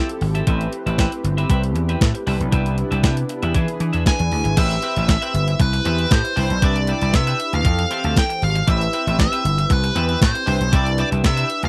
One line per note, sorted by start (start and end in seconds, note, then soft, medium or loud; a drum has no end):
0.00 0.46 F3 medium
0.00 0.44 C4 medium
0.00 0.45 E4 medium
0.00 0.45 G4 medium
0.00 0.46 G4 medium
0.00 0.46 A4 medium
0.00 0.49 A4 medium
0.09 muted clean electric guitar stroke soft
0.09 closed hi-hat medium
0.21 0.40 G#1 medium
0.21 muted clean electric guitar stroke soft
0.21 open hi-hat medium
0.35 0.46 C4 medium
0.35 0.46 G4 medium
0.35 0.45 A4 medium
0.35 0.45 E5 medium
0.35 closed hi-hat medium
0.46 0.66 A1 loud
0.46 2.25 A3 medium
0.46 2.23 C4 medium
0.46 0.71 C4 medium
0.46 2.25 C4 medium
0.46 2.23 E4 medium
0.46 2.25 G4 medium
0.46 2.23 G4 medium
0.46 0.71 G4 medium
0.46 2.23 B4 medium
0.46 0.71 B4 loud
0.46 0.71 E5 medium
0.46 kick loud
0.46 closed hi-hat medium
0.61 closed hi-hat soft
0.73 muted clean electric guitar stroke soft
0.73 closed hi-hat medium
0.86 1.05 A1 medium
0.86 0.97 C4 medium
0.86 0.97 G4 medium
0.86 0.97 B4 medium
0.86 0.96 E5 medium
0.86 closed hi-hat medium
0.98 1.13 C4 medium
0.98 1.12 G4 medium
0.98 1.11 B4 medium
0.98 1.11 E5 loud
0.98 kick loud
0.98 snare loud
0.98 closed hi-hat medium
1.12 muted clean electric guitar stroke soft
1.12 closed hi-hat medium
1.24 1.43 G1 loud
1.24 muted clean electric guitar stroke soft
1.24 closed hi-hat medium
1.38 1.48 C4 medium
1.38 1.48 G4 medium
1.38 1.48 B4 medium
1.38 1.48 E5 medium
1.38 closed hi-hat medium
1.50 1.75 C2 medium
1.50 1.64 C4 medium
1.50 1.63 G4 medium
1.50 1.63 B4 medium
1.50 1.62 E5 loud
1.50 kick loud
1.50 closed hi-hat medium
1.64 muted clean electric guitar stroke soft
1.64 closed hi-hat medium
1.75 1.94 E2 medium
1.75 muted clean electric guitar stroke soft
1.75 closed hi-hat medium
1.89 2.00 C4 medium
1.89 2.00 G4 medium
1.89 1.99 B4 medium
1.89 1.99 E5 medium
1.89 closed hi-hat medium
2.01 2.11 A2 loud
2.01 kick loud
2.01 snare loud
2.01 closed hi-hat loud
2.15 muted clean electric guitar stroke soft
2.15 closed hi-hat medium
2.26 2.37 C2 loud
2.26 3.54 C3 medium
2.26 3.54 B3 medium
2.26 3.52 D4 medium
2.26 2.41 D4 medium
2.26 4.55 D4 medium
2.26 3.52 E4 medium
2.26 3.54 E4 medium
2.26 2.40 G4 medium
2.26 3.53 G4 medium
2.26 2.40 B4 medium
2.26 3.53 B4 loud
2.26 2.39 E5 medium
2.26 open hi-hat medium
2.40 2.49 B1 medium
2.40 muted clean electric guitar stroke soft
2.40 closed hi-hat medium
2.52 2.82 C2 loud
2.52 2.76 D4 medium
2.52 2.76 G4 medium
2.52 2.76 B4 medium
2.52 2.76 E5 medium
2.52 kick loud
2.52 closed hi-hat medium
2.66 closed hi-hat soft
2.78 muted clean electric guitar stroke soft
2.78 closed hi-hat medium
2.91 3.05 C2 medium
2.91 3.02 D4 medium
2.91 3.02 G4 medium
2.91 3.02 B4 medium
2.91 3.01 E5 medium
2.91 closed hi-hat medium
3.03 3.22 C3 medium
3.03 3.18 D4 medium
3.03 3.17 G4 medium
3.03 3.16 B4 medium
3.03 3.16 E5 medium
3.03 kick loud
3.03 snare loud
3.03 closed hi-hat medium
3.17 closed hi-hat medium
3.29 muted clean electric guitar stroke soft
3.29 closed hi-hat medium
3.43 3.52 E2 medium
3.43 3.53 D4 medium
3.43 3.53 G4 medium
3.43 3.53 B4 medium
3.43 3.53 E5 medium
3.43 closed hi-hat medium
3.54 3.65 E3 medium
3.54 4.56 E3 medium
3.54 4.55 D4 medium
3.54 3.69 D4 medium
3.54 4.55 E4 medium
3.54 3.62 F4 medium
3.54 4.56 G#4 medium
3.54 3.68 G#4 medium
3.54 3.68 B4 loud
3.54 4.56 B4 medium
3.54 3.67 E5 medium
3.54 kick loud
3.54 closed hi-hat medium
3.62 4.59 G#4 medium
3.68 muted clean electric guitar stroke soft
3.68 closed hi-hat medium
3.80 3.90 E3 medium
3.80 muted clean electric guitar stroke soft
3.80 closed hi-hat medium
3.93 4.03 E2 medium
3.93 4.04 D4 medium
3.93 4.04 G#4 medium
3.93 4.04 B4 medium
3.93 4.04 E5 medium
3.93 closed hi-hat medium
4.05 4.60 G#5 medium
4.05 muted clean electric guitar stroke soft
4.05 kick loud
4.05 snare loud
4.05 closed hi-hat medium
4.19 4.29 E2 medium
4.19 muted clean electric guitar stroke soft
4.19 closed hi-hat medium
4.32 4.42 D2 medium
4.32 open hi-hat medium
4.44 4.54 G#1 medium
4.44 muted clean electric guitar stroke soft
4.44 closed hi-hat medium
4.57 4.76 A1 loud
4.57 6.33 C4 medium
4.57 4.71 C4 medium
4.57 6.33 E4 medium
4.57 4.72 G4 medium
4.57 6.33 G4 medium
4.57 4.72 B4 loud
4.57 6.34 B4 medium
4.57 4.72 E5 loud
4.57 5.09 E5 loud
4.57 kick loud
4.57 closed hi-hat loud
4.57 crash loud
4.71 closed hi-hat soft
4.82 4.94 C4 medium
4.82 4.94 G4 medium
4.82 4.95 B4 medium
4.82 4.95 E5 medium
4.82 closed hi-hat medium
4.96 5.16 A1 loud
4.96 5.07 C4 medium
4.96 5.07 G4 medium
4.96 5.07 B4 medium
4.96 5.06 E5 medium
4.96 closed hi-hat medium
5.08 5.62 E5 medium
5.08 muted clean electric guitar stroke soft
5.08 kick loud
5.08 snare loud
5.08 closed hi-hat medium
5.22 5.33 C4 medium
5.22 5.33 G4 medium
5.22 5.33 B4 medium
5.22 5.34 E5 medium
5.22 closed hi-hat medium
5.34 5.53 G1 loud
5.34 muted clean electric guitar stroke soft
5.34 closed hi-hat medium
5.48 muted clean electric guitar stroke soft
5.48 closed hi-hat medium
5.60 5.79 C2 medium
5.60 6.12 B4 medium
5.60 muted clean electric guitar stroke soft
5.60 kick loud
5.60 closed hi-hat medium
5.73 muted clean electric guitar stroke soft
5.73 closed hi-hat medium
5.85 6.05 E2 medium
5.85 5.99 C4 medium
5.85 5.99 G4 medium
5.85 5.98 B4 medium
5.85 5.98 E5 loud
5.85 closed hi-hat medium
5.98 6.10 C4 medium
5.98 6.10 G4 medium
5.98 6.09 B4 medium
5.98 6.09 E5 medium
5.98 closed hi-hat medium
6.11 6.21 A2 loud
6.11 6.65 C5 loud
6.11 muted clean electric guitar stroke soft
6.11 kick loud
6.11 snare loud
6.11 closed hi-hat loud
6.25 muted clean electric guitar stroke soft
6.25 closed hi-hat medium
6.36 6.47 C2 loud
6.36 6.51 D4 medium
6.36 7.62 D4 medium
6.36 7.63 E4 medium
6.36 6.50 G4 loud
6.36 7.63 G4 medium
6.36 6.50 B4 medium
6.36 7.63 B4 medium
6.36 6.49 E5 loud
6.36 open hi-hat medium
6.50 6.59 B1 medium
6.50 muted clean electric guitar stroke medium
6.50 closed hi-hat medium
6.62 6.92 C2 loud
6.62 6.77 D4 medium
6.62 6.77 G4 loud
6.62 6.77 B4 medium
6.62 7.16 D5 medium
6.62 6.77 E5 loud
6.62 kick loud
6.62 closed hi-hat medium
6.76 closed hi-hat soft
6.87 6.99 D4 medium
6.87 7.00 G4 medium
6.87 7.00 B4 medium
6.87 7.00 E5 medium
6.87 closed hi-hat medium
7.01 7.11 C2 medium
7.01 7.12 D4 soft
7.01 7.12 G4 medium
7.01 7.12 B4 medium
7.01 7.12 E5 medium
7.01 closed hi-hat medium
7.13 7.33 C3 loud
7.13 7.55 E5 medium
7.13 muted clean electric guitar stroke soft
7.13 kick loud
7.13 snare loud
7.13 closed hi-hat loud
7.27 7.38 D4 medium
7.27 7.39 G4 medium
7.27 7.39 B4 medium
7.27 7.39 E5 medium
7.27 closed hi-hat medium
7.39 muted clean electric guitar stroke soft
7.39 closed hi-hat medium
7.53 7.62 D2 medium
7.53 8.19 F5 loud
7.53 muted clean electric guitar stroke soft
7.53 closed hi-hat medium
7.65 7.84 F2 loud
7.65 8.66 E3 medium
7.65 8.65 C4 medium
7.65 8.66 G4 medium
7.65 8.66 A4 medium
7.65 muted clean electric guitar stroke soft
7.65 kick loud
7.65 closed hi-hat medium
7.79 muted clean electric guitar stroke soft
7.79 closed hi-hat medium
7.91 8.04 C4 medium
7.91 8.04 G4 medium
7.91 8.03 A4 medium
7.91 8.03 E5 medium
7.91 closed hi-hat medium
8.04 8.13 D2 medium
8.04 8.15 C4 medium
8.04 8.15 G4 medium
8.04 8.14 A4 medium
8.04 8.14 E5 medium
8.04 closed hi-hat medium
8.16 8.44 G5 loud
8.16 kick loud
8.16 snare loud
8.16 closed hi-hat loud
8.30 muted clean electric guitar stroke medium
8.30 closed hi-hat medium
8.42 8.61 G#1 medium
8.42 8.67 F5 loud
8.42 open hi-hat medium
8.55 muted clean electric guitar stroke medium
8.55 closed hi-hat medium
8.67 8.87 A1 loud
8.67 8.82 C4 medium
8.67 10.43 C4 medium
8.67 10.44 E4 medium
8.67 8.82 G4 medium
8.67 10.44 G4 medium
8.67 8.82 B4 medium
8.67 10.44 B4 medium
8.67 8.83 E5 loud
8.67 9.19 E5 loud
8.67 kick loud
8.67 closed hi-hat medium
8.81 closed hi-hat soft
8.93 9.04 C4 medium
8.93 9.05 G4 medium
8.93 9.05 B4 medium
8.93 9.05 E5 medium
8.93 closed hi-hat medium
9.06 9.26 A1 loud
9.06 9.17 C4 medium
9.06 9.17 G4 medium
9.06 9.17 B4 medium
9.06 9.17 E5 medium
9.06 closed hi-hat medium
9.19 9.73 E5 loud
9.19 kick loud
9.19 snare loud
9.19 closed hi-hat medium
9.32 9.43 C4 medium
9.32 9.44 G4 medium
9.32 9.44 B4 medium
9.32 9.44 E5 medium
9.32 closed hi-hat medium
9.44 9.64 G1 loud
9.44 muted clean electric guitar stroke soft
9.44 closed hi-hat medium
9.58 muted clean electric guitar stroke soft
9.58 closed hi-hat medium
9.70 9.89 C2 loud
9.70 10.19 B4 medium
9.70 muted clean electric guitar stroke medium
9.70 kick loud
9.70 closed hi-hat medium
9.84 muted clean electric guitar stroke medium
9.84 closed hi-hat medium
9.95 10.15 E2 medium
9.95 10.10 C4 medium
9.95 10.09 G4 loud
9.95 10.09 B4 loud
9.95 10.08 E5 loud
9.95 closed hi-hat medium
10.09 10.20 C4 medium
10.09 10.20 G4 medium
10.09 10.20 B4 medium
10.09 10.19 E5 medium
10.09 closed hi-hat medium
10.21 10.32 A2 loud
10.21 10.75 C5 medium
10.21 muted clean electric guitar stroke soft
10.21 kick loud
10.21 snare loud
10.21 closed hi-hat loud
10.35 muted clean electric guitar stroke soft
10.35 closed hi-hat medium
10.46 10.57 C2 loud
10.46 10.61 D4 medium
10.46 11.69 D4 medium
10.46 11.69 E4 medium
10.46 10.60 G4 loud
10.46 11.69 G4 medium
10.46 10.59 B4 medium
10.46 11.69 B4 medium
10.46 10.59 E5 medium
10.46 open hi-hat medium
10.60 10.70 B1 medium
10.60 muted clean electric guitar stroke soft
10.60 closed hi-hat medium
10.72 11.02 C2 loud
10.72 10.87 D4 medium
10.72 10.87 G4 medium
10.72 10.87 B4 loud
10.72 11.00 D5 loud
10.72 10.87 E5 medium
10.72 kick loud
10.72 closed hi-hat loud
10.86 closed hi-hat soft
10.98 11.09 D4 medium
10.98 11.10 G4 medium
10.98 11.10 B4 medium
10.98 11.08 D5 loud
10.98 11.10 E5 medium
10.98 closed hi-hat medium
11.11 11.21 C2 medium
11.11 11.22 D4 medium
11.11 11.22 G4 medium
11.11 11.22 B4 medium
11.11 11.22 E5 medium
11.11 closed hi-hat medium
11.24 11.43 C3 loud
11.24 11.61 E5 loud
11.24 muted clean electric guitar stroke medium
11.24 kick loud
11.24 snare loud
11.24 closed hi-hat medium
11.37 11.48 D4 medium
11.37 11.49 G4 medium
11.37 11.49 B4 medium
11.37 11.49 E5 medium
11.37 closed hi-hat medium
11.49 muted clean electric guitar stroke soft
11.49 closed hi-hat medium
11.63 11.69 D2 medium
11.63 11.69 F5 loud
11.63 muted clean electric guitar stroke soft
11.63 closed hi-hat medium